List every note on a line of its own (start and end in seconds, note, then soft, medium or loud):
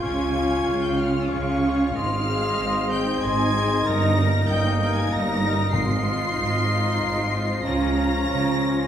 0.00 0.58 C#2 medium
0.00 0.58 C#3 medium
0.00 1.90 C#4 medium
0.00 0.33 C#4 medium
0.00 1.90 F4 medium
0.00 0.33 F4 medium
0.00 1.29 F5 medium
0.00 0.80 G#5 loud
0.00 1.31 C#6 medium
0.00 0.80 G#6 loud
0.35 0.97 C#4 medium
0.35 0.97 F4 medium
0.66 1.23 C#2 medium
0.66 1.23 C#3 medium
0.83 0.99 G5 medium
0.83 0.99 G6 medium
0.98 1.61 C#4 medium
0.98 1.61 F4 medium
0.98 1.31 F5 medium
0.98 1.30 F6 loud
1.29 1.87 C#2 medium
1.29 1.87 C#3 medium
1.29 1.94 C#5 medium
1.29 1.95 F5 medium
1.29 1.94 C#6 loud
1.29 1.94 C#6 medium
1.62 1.94 C#4 medium
1.62 1.94 F4 medium
1.94 2.51 G#1 medium
1.94 2.51 G#2 loud
1.94 3.81 C4 medium
1.94 5.56 D#4 loud
1.94 3.20 D#5 medium
1.94 2.91 F5 loud
1.94 3.20 C6 medium
1.94 2.89 F6 loud
2.27 2.89 C4 medium
2.27 2.89 G#4 medium
2.59 3.15 G#1 loud
2.59 3.15 G#2 medium
2.90 3.53 C4 medium
2.90 3.52 G#4 medium
2.90 3.23 G5 loud
2.90 3.22 G6 loud
3.22 3.78 G#1 medium
3.22 3.78 G#2 loud
3.22 3.84 D#5 medium
3.22 3.85 G#5 loud
3.22 3.87 C6 medium
3.22 3.85 G#6 loud
3.54 3.85 C4 medium
3.54 3.85 G#4 medium
3.84 4.41 G1 loud
3.84 4.41 G2 loud
3.84 5.56 A#3 loud
3.84 4.15 D#4 medium
3.84 4.15 A#4 medium
3.84 4.26 D#5 medium
3.84 4.26 A#5 medium
3.84 4.47 A#5 loud
3.84 4.48 A#6 loud
4.16 4.78 D#4 medium
4.16 4.78 A#4 medium
4.47 5.03 G1 loud
4.47 5.03 G2 loud
4.47 5.07 D#5 medium
4.47 4.79 G5 loud
4.47 5.07 A#5 medium
4.47 4.78 G6 loud
4.79 5.41 D#4 medium
4.79 5.40 A#4 medium
4.79 4.95 G5 loud
4.79 4.95 G6 loud
4.94 5.11 G#5 medium
4.94 5.10 G#6 loud
5.10 5.66 G1 loud
5.10 5.66 G2 loud
5.10 5.72 D#5 medium
5.10 5.75 A#5 medium
5.10 5.74 A#5 loud
5.10 5.73 A#6 loud
5.42 5.73 D#4 medium
5.42 5.73 A#4 medium
5.73 6.29 G#1 loud
5.73 6.65 G#2 loud
5.73 6.29 G#2 loud
5.73 8.87 F3 loud
5.73 7.60 D#4 loud
5.73 7.61 D#5 medium
5.73 7.64 F5 loud
5.73 7.65 C6 loud
5.73 7.60 C7 loud
6.05 6.68 D#4 medium
6.05 6.68 F4 medium
6.37 6.93 G#1 medium
6.37 6.93 G#2 medium
6.69 7.31 D#4 medium
6.69 7.31 F4 medium
7.01 7.57 G#1 medium
7.01 7.57 G#2 loud
7.32 7.64 D#4 medium
7.32 7.64 F4 medium
7.64 8.21 C#2 medium
7.64 8.21 C#3 medium
7.64 7.96 C#4 medium
7.64 8.87 C#4 medium
7.64 7.96 F4 medium
7.64 8.87 C#5 medium
7.64 8.87 F5 medium
7.64 8.87 A#5 loud
7.64 8.87 A#6 loud
7.97 8.60 C#4 medium
7.97 8.59 F4 medium
8.28 8.84 C#2 medium
8.28 8.84 C#3 medium
8.61 8.87 C#4 medium
8.61 8.87 F4 medium